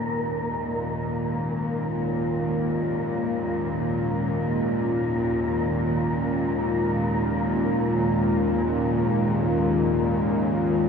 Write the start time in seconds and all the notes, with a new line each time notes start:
Already playing: D#2 A#2 D#3 G#3 A#3 C#4 F4 A#4
5.01 A#3 A#4